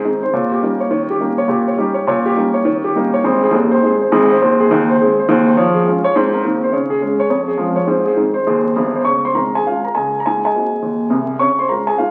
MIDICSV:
0, 0, Header, 1, 2, 480
1, 0, Start_track
1, 0, Key_signature, -4, "major"
1, 0, Tempo, 291829
1, 1472, Time_signature, 4, 2, 24, 8
1, 7232, Key_signature, -5, "major"
1, 19915, End_track
2, 0, Start_track
2, 0, Title_t, "Upright piano"
2, 0, Program_c, 0, 0
2, 0, Control_c, 0, 64, 127
2, 0, Note_on_c, 0, 68, 73
2, 53, Control_c, 0, 64, 0
2, 77, Note_on_c, 0, 56, 48
2, 79, Note_on_c, 0, 51, 72
2, 81, Note_on_c, 0, 63, 61
2, 88, Note_on_c, 0, 60, 49
2, 218, Note_off_c, 0, 68, 0
2, 328, Note_off_c, 0, 56, 0
2, 331, Note_off_c, 0, 63, 0
2, 337, Note_off_c, 0, 60, 0
2, 377, Note_on_c, 0, 72, 80
2, 463, Note_off_c, 0, 51, 0
2, 534, Note_off_c, 0, 72, 0
2, 549, Note_on_c, 0, 46, 83
2, 557, Note_on_c, 0, 73, 62
2, 765, Control_c, 0, 64, 127
2, 852, Note_on_c, 0, 67, 63
2, 941, Note_off_c, 0, 46, 0
2, 942, Note_off_c, 0, 73, 0
2, 1015, Control_c, 0, 64, 0
2, 1024, Note_on_c, 0, 55, 53
2, 1027, Note_on_c, 0, 58, 68
2, 1033, Note_on_c, 0, 61, 53
2, 1035, Note_on_c, 0, 63, 61
2, 1192, Note_off_c, 0, 67, 0
2, 1279, Note_off_c, 0, 55, 0
2, 1286, Note_off_c, 0, 61, 0
2, 1287, Note_off_c, 0, 63, 0
2, 1320, Note_on_c, 0, 73, 68
2, 1417, Note_off_c, 0, 58, 0
2, 1470, Note_off_c, 0, 73, 0
2, 1490, Note_on_c, 0, 51, 92
2, 1494, Note_on_c, 0, 73, 74
2, 1729, Control_c, 0, 64, 127
2, 1813, Note_on_c, 0, 67, 70
2, 1890, Note_off_c, 0, 51, 0
2, 1891, Note_off_c, 0, 73, 0
2, 1974, Control_c, 0, 64, 0
2, 1974, Note_on_c, 0, 55, 46
2, 1977, Note_on_c, 0, 61, 49
2, 1979, Note_on_c, 0, 63, 52
2, 1987, Note_on_c, 0, 58, 70
2, 2153, Note_off_c, 0, 67, 0
2, 2232, Note_off_c, 0, 55, 0
2, 2234, Note_off_c, 0, 61, 0
2, 2235, Note_off_c, 0, 63, 0
2, 2271, Note_on_c, 0, 73, 79
2, 2377, Note_off_c, 0, 58, 0
2, 2432, Note_on_c, 0, 46, 79
2, 2452, Note_on_c, 0, 67, 71
2, 2621, Note_off_c, 0, 73, 0
2, 2757, Note_on_c, 0, 73, 71
2, 2840, Note_off_c, 0, 46, 0
2, 2850, Note_off_c, 0, 67, 0
2, 2924, Note_on_c, 0, 61, 56
2, 2929, Note_on_c, 0, 55, 62
2, 2930, Note_on_c, 0, 67, 69
2, 2943, Note_on_c, 0, 63, 63
2, 3105, Note_off_c, 0, 73, 0
2, 3185, Note_off_c, 0, 61, 0
2, 3188, Note_off_c, 0, 55, 0
2, 3193, Note_on_c, 0, 73, 70
2, 3198, Note_off_c, 0, 63, 0
2, 3329, Note_off_c, 0, 67, 0
2, 3383, Note_off_c, 0, 73, 0
2, 3406, Note_on_c, 0, 46, 88
2, 3419, Note_on_c, 0, 73, 81
2, 3651, Control_c, 0, 64, 127
2, 3709, Note_on_c, 0, 67, 81
2, 3809, Note_off_c, 0, 46, 0
2, 3813, Note_off_c, 0, 73, 0
2, 3888, Note_on_c, 0, 58, 68
2, 3893, Note_on_c, 0, 55, 55
2, 3895, Control_c, 0, 64, 0
2, 3897, Note_on_c, 0, 61, 65
2, 3908, Note_on_c, 0, 63, 56
2, 4061, Note_off_c, 0, 67, 0
2, 4151, Note_off_c, 0, 55, 0
2, 4154, Note_off_c, 0, 61, 0
2, 4162, Note_off_c, 0, 63, 0
2, 4175, Note_on_c, 0, 73, 82
2, 4288, Note_off_c, 0, 58, 0
2, 4340, Note_off_c, 0, 73, 0
2, 4354, Note_on_c, 0, 51, 102
2, 4365, Note_on_c, 0, 73, 70
2, 4612, Control_c, 0, 64, 127
2, 4676, Note_on_c, 0, 67, 78
2, 4761, Note_off_c, 0, 51, 0
2, 4767, Note_off_c, 0, 73, 0
2, 4854, Control_c, 0, 64, 0
2, 4855, Note_on_c, 0, 55, 59
2, 4858, Note_on_c, 0, 58, 79
2, 4867, Note_on_c, 0, 61, 55
2, 4878, Note_on_c, 0, 63, 74
2, 5025, Note_off_c, 0, 67, 0
2, 5113, Note_off_c, 0, 55, 0
2, 5121, Note_off_c, 0, 61, 0
2, 5129, Note_off_c, 0, 63, 0
2, 5159, Note_on_c, 0, 73, 84
2, 5253, Note_off_c, 0, 58, 0
2, 5325, Note_on_c, 0, 44, 78
2, 5326, Note_off_c, 0, 73, 0
2, 5334, Note_on_c, 0, 72, 87
2, 5335, Note_on_c, 0, 32, 95
2, 5564, Control_c, 0, 64, 127
2, 5630, Note_on_c, 0, 68, 84
2, 5704, Note_off_c, 0, 44, 0
2, 5710, Note_off_c, 0, 32, 0
2, 5731, Note_off_c, 0, 72, 0
2, 5777, Note_on_c, 0, 39, 86
2, 5785, Note_on_c, 0, 27, 89
2, 5785, Note_on_c, 0, 51, 65
2, 5818, Control_c, 0, 64, 0
2, 5981, Note_off_c, 0, 68, 0
2, 6107, Note_on_c, 0, 72, 91
2, 6167, Note_off_c, 0, 39, 0
2, 6172, Note_off_c, 0, 27, 0
2, 6196, Note_off_c, 0, 51, 0
2, 6292, Note_on_c, 0, 63, 60
2, 6302, Note_on_c, 0, 56, 60
2, 6308, Note_on_c, 0, 60, 58
2, 6311, Note_on_c, 0, 68, 80
2, 6460, Note_off_c, 0, 72, 0
2, 6551, Note_off_c, 0, 63, 0
2, 6558, Note_off_c, 0, 56, 0
2, 6562, Note_off_c, 0, 60, 0
2, 6605, Note_on_c, 0, 72, 74
2, 6699, Note_off_c, 0, 68, 0
2, 6773, Note_on_c, 0, 32, 100
2, 6779, Note_on_c, 0, 44, 108
2, 6782, Note_on_c, 0, 68, 89
2, 6949, Note_off_c, 0, 72, 0
2, 7075, Note_on_c, 0, 72, 90
2, 7148, Note_off_c, 0, 32, 0
2, 7152, Note_off_c, 0, 44, 0
2, 7175, Note_off_c, 0, 68, 0
2, 7244, Note_off_c, 0, 72, 0
2, 7266, Note_on_c, 0, 51, 90
2, 7268, Note_on_c, 0, 72, 84
2, 7269, Note_on_c, 0, 39, 95
2, 7505, Control_c, 0, 64, 127
2, 7568, Note_on_c, 0, 68, 94
2, 7636, Note_off_c, 0, 51, 0
2, 7638, Note_off_c, 0, 39, 0
2, 7658, Note_off_c, 0, 72, 0
2, 7725, Control_c, 0, 64, 0
2, 7732, Note_on_c, 0, 51, 94
2, 7750, Note_on_c, 0, 39, 105
2, 7756, Note_on_c, 0, 63, 80
2, 7910, Note_off_c, 0, 68, 0
2, 8054, Note_on_c, 0, 72, 92
2, 8108, Note_off_c, 0, 51, 0
2, 8118, Note_off_c, 0, 39, 0
2, 8142, Note_off_c, 0, 63, 0
2, 8248, Note_on_c, 0, 68, 80
2, 8249, Note_on_c, 0, 56, 67
2, 8256, Note_on_c, 0, 60, 65
2, 8393, Note_off_c, 0, 72, 0
2, 8497, Note_off_c, 0, 56, 0
2, 8502, Note_off_c, 0, 60, 0
2, 8545, Note_on_c, 0, 72, 76
2, 8627, Note_off_c, 0, 68, 0
2, 8691, Note_on_c, 0, 51, 101
2, 8697, Note_on_c, 0, 39, 113
2, 8702, Note_on_c, 0, 68, 80
2, 8878, Note_off_c, 0, 72, 0
2, 8993, Note_on_c, 0, 72, 84
2, 9067, Note_off_c, 0, 51, 0
2, 9071, Note_off_c, 0, 39, 0
2, 9094, Note_off_c, 0, 68, 0
2, 9160, Note_on_c, 0, 73, 82
2, 9161, Note_on_c, 0, 53, 96
2, 9163, Note_off_c, 0, 72, 0
2, 9407, Control_c, 0, 64, 127
2, 9444, Note_on_c, 0, 68, 82
2, 9563, Note_off_c, 0, 73, 0
2, 9565, Note_off_c, 0, 53, 0
2, 9647, Note_on_c, 0, 56, 57
2, 9650, Note_on_c, 0, 65, 66
2, 9654, Control_c, 0, 64, 0
2, 9668, Note_on_c, 0, 61, 62
2, 9807, Note_off_c, 0, 68, 0
2, 9906, Note_off_c, 0, 56, 0
2, 9921, Note_off_c, 0, 61, 0
2, 9941, Note_on_c, 0, 73, 99
2, 10048, Note_off_c, 0, 65, 0
2, 10116, Note_off_c, 0, 73, 0
2, 10119, Note_on_c, 0, 72, 89
2, 10129, Note_on_c, 0, 44, 104
2, 10162, Note_on_c, 0, 60, 58
2, 10375, Control_c, 0, 64, 127
2, 10412, Note_off_c, 0, 60, 0
2, 10416, Note_on_c, 0, 70, 68
2, 10522, Note_off_c, 0, 72, 0
2, 10529, Note_off_c, 0, 44, 0
2, 10594, Note_on_c, 0, 58, 60
2, 10605, Note_on_c, 0, 60, 62
2, 10608, Control_c, 0, 64, 0
2, 10608, Note_on_c, 0, 51, 82
2, 10773, Note_off_c, 0, 70, 0
2, 10857, Note_off_c, 0, 58, 0
2, 10865, Note_off_c, 0, 60, 0
2, 10917, Note_on_c, 0, 72, 78
2, 11007, Note_off_c, 0, 51, 0
2, 11059, Note_on_c, 0, 49, 88
2, 11063, Note_on_c, 0, 73, 67
2, 11084, Note_off_c, 0, 72, 0
2, 11339, Control_c, 0, 64, 127
2, 11351, Note_on_c, 0, 68, 90
2, 11471, Note_off_c, 0, 49, 0
2, 11474, Note_off_c, 0, 73, 0
2, 11545, Note_on_c, 0, 61, 60
2, 11547, Note_on_c, 0, 56, 71
2, 11564, Control_c, 0, 64, 0
2, 11720, Note_off_c, 0, 68, 0
2, 11810, Note_off_c, 0, 61, 0
2, 11837, Note_on_c, 0, 73, 86
2, 11957, Note_off_c, 0, 56, 0
2, 11982, Note_off_c, 0, 73, 0
2, 12003, Note_on_c, 0, 41, 81
2, 12006, Note_on_c, 0, 73, 77
2, 12279, Control_c, 0, 64, 127
2, 12301, Note_on_c, 0, 68, 73
2, 12422, Note_off_c, 0, 41, 0
2, 12425, Note_off_c, 0, 73, 0
2, 12454, Note_on_c, 0, 53, 76
2, 12457, Note_on_c, 0, 56, 63
2, 12479, Note_on_c, 0, 61, 55
2, 12534, Control_c, 0, 64, 0
2, 12675, Note_off_c, 0, 68, 0
2, 12735, Note_off_c, 0, 56, 0
2, 12751, Note_off_c, 0, 61, 0
2, 12762, Note_on_c, 0, 73, 74
2, 12889, Note_off_c, 0, 53, 0
2, 12948, Note_on_c, 0, 44, 85
2, 12964, Note_on_c, 0, 72, 68
2, 12965, Note_off_c, 0, 73, 0
2, 13002, Note_on_c, 0, 60, 56
2, 13246, Control_c, 0, 64, 127
2, 13247, Note_on_c, 0, 68, 73
2, 13262, Note_off_c, 0, 60, 0
2, 13373, Note_off_c, 0, 44, 0
2, 13384, Note_off_c, 0, 72, 0
2, 13425, Note_on_c, 0, 56, 53
2, 13427, Note_on_c, 0, 51, 67
2, 13435, Note_on_c, 0, 63, 57
2, 13437, Note_on_c, 0, 60, 44
2, 13490, Control_c, 0, 64, 0
2, 13627, Note_off_c, 0, 68, 0
2, 13700, Note_off_c, 0, 56, 0
2, 13708, Note_off_c, 0, 63, 0
2, 13709, Note_off_c, 0, 60, 0
2, 13715, Note_on_c, 0, 72, 78
2, 13855, Note_off_c, 0, 51, 0
2, 13931, Note_on_c, 0, 39, 79
2, 13931, Note_on_c, 0, 68, 74
2, 14101, Note_off_c, 0, 72, 0
2, 14232, Note_on_c, 0, 72, 63
2, 14346, Note_off_c, 0, 39, 0
2, 14347, Note_off_c, 0, 68, 0
2, 14409, Note_on_c, 0, 43, 78
2, 14411, Note_on_c, 0, 31, 89
2, 14416, Note_on_c, 0, 68, 63
2, 14600, Note_off_c, 0, 72, 0
2, 14728, Note_on_c, 0, 72, 66
2, 14800, Note_off_c, 0, 43, 0
2, 14801, Note_off_c, 0, 31, 0
2, 14829, Note_off_c, 0, 68, 0
2, 14872, Note_on_c, 0, 37, 57
2, 14878, Note_on_c, 0, 85, 83
2, 14881, Note_on_c, 0, 49, 55
2, 14895, Note_on_c, 0, 73, 56
2, 14908, Note_off_c, 0, 72, 0
2, 15171, Control_c, 0, 64, 127
2, 15179, Note_off_c, 0, 73, 0
2, 15192, Note_off_c, 0, 85, 0
2, 15215, Note_on_c, 0, 84, 81
2, 15220, Note_on_c, 0, 72, 61
2, 15270, Note_off_c, 0, 37, 0
2, 15276, Note_off_c, 0, 49, 0
2, 15370, Note_on_c, 0, 44, 58
2, 15376, Note_on_c, 0, 82, 68
2, 15377, Note_on_c, 0, 32, 56
2, 15382, Note_off_c, 0, 72, 0
2, 15391, Note_off_c, 0, 84, 0
2, 15392, Note_on_c, 0, 70, 56
2, 15406, Control_c, 0, 64, 0
2, 15668, Note_off_c, 0, 70, 0
2, 15681, Note_off_c, 0, 82, 0
2, 15712, Note_on_c, 0, 80, 77
2, 15748, Note_on_c, 0, 68, 61
2, 15761, Note_off_c, 0, 44, 0
2, 15765, Note_off_c, 0, 32, 0
2, 15880, Note_off_c, 0, 80, 0
2, 15888, Note_off_c, 0, 68, 0
2, 15900, Note_on_c, 0, 61, 38
2, 15902, Note_on_c, 0, 77, 71
2, 15911, Note_on_c, 0, 56, 37
2, 15932, Note_on_c, 0, 65, 52
2, 16155, Note_off_c, 0, 61, 0
2, 16163, Note_off_c, 0, 56, 0
2, 16181, Note_off_c, 0, 65, 0
2, 16185, Note_off_c, 0, 77, 0
2, 16190, Note_on_c, 0, 82, 66
2, 16216, Note_on_c, 0, 70, 52
2, 16359, Note_off_c, 0, 82, 0
2, 16361, Note_off_c, 0, 70, 0
2, 16361, Note_on_c, 0, 80, 74
2, 16369, Note_on_c, 0, 49, 58
2, 16379, Note_on_c, 0, 37, 61
2, 16391, Note_on_c, 0, 68, 56
2, 16734, Note_off_c, 0, 68, 0
2, 16744, Note_off_c, 0, 80, 0
2, 16745, Note_off_c, 0, 49, 0
2, 16750, Note_off_c, 0, 37, 0
2, 16778, Note_on_c, 0, 82, 71
2, 16848, Note_off_c, 0, 82, 0
2, 16871, Note_on_c, 0, 80, 80
2, 16885, Note_on_c, 0, 44, 66
2, 16886, Note_on_c, 0, 68, 56
2, 17099, Control_c, 0, 64, 127
2, 17137, Note_off_c, 0, 68, 0
2, 17149, Note_off_c, 0, 80, 0
2, 17187, Note_on_c, 0, 80, 75
2, 17198, Note_on_c, 0, 75, 52
2, 17208, Note_on_c, 0, 68, 55
2, 17269, Note_off_c, 0, 44, 0
2, 17323, Control_c, 0, 64, 0
2, 17349, Note_on_c, 0, 58, 36
2, 17367, Note_on_c, 0, 60, 33
2, 17372, Note_on_c, 0, 66, 39
2, 17602, Note_off_c, 0, 58, 0
2, 17615, Note_off_c, 0, 60, 0
2, 17618, Note_off_c, 0, 66, 0
2, 17807, Note_on_c, 0, 39, 60
2, 18207, Note_off_c, 0, 39, 0
2, 18253, Note_on_c, 0, 48, 71
2, 18260, Note_on_c, 0, 36, 74
2, 18538, Note_off_c, 0, 75, 0
2, 18543, Note_off_c, 0, 68, 0
2, 18599, Note_off_c, 0, 80, 0
2, 18644, Note_off_c, 0, 48, 0
2, 18648, Note_off_c, 0, 36, 0
2, 18741, Note_on_c, 0, 85, 93
2, 18745, Note_on_c, 0, 49, 70
2, 18756, Note_on_c, 0, 73, 67
2, 19022, Control_c, 0, 64, 127
2, 19031, Note_off_c, 0, 73, 0
2, 19044, Note_off_c, 0, 85, 0
2, 19063, Note_on_c, 0, 84, 78
2, 19078, Note_on_c, 0, 72, 62
2, 19155, Note_off_c, 0, 49, 0
2, 19226, Note_on_c, 0, 56, 40
2, 19228, Note_on_c, 0, 82, 65
2, 19232, Note_off_c, 0, 72, 0
2, 19236, Note_off_c, 0, 84, 0
2, 19242, Note_on_c, 0, 65, 40
2, 19243, Control_c, 0, 64, 0
2, 19246, Note_on_c, 0, 61, 42
2, 19269, Note_on_c, 0, 70, 60
2, 19491, Note_off_c, 0, 56, 0
2, 19503, Note_off_c, 0, 65, 0
2, 19506, Note_off_c, 0, 61, 0
2, 19524, Note_on_c, 0, 80, 80
2, 19529, Note_off_c, 0, 70, 0
2, 19529, Note_off_c, 0, 82, 0
2, 19538, Note_on_c, 0, 68, 69
2, 19702, Note_off_c, 0, 68, 0
2, 19707, Note_off_c, 0, 80, 0
2, 19707, Note_on_c, 0, 77, 72
2, 19724, Note_on_c, 0, 44, 65
2, 19731, Note_on_c, 0, 65, 53
2, 19915, Note_off_c, 0, 44, 0
2, 19915, Note_off_c, 0, 65, 0
2, 19915, Note_off_c, 0, 77, 0
2, 19915, End_track
0, 0, End_of_file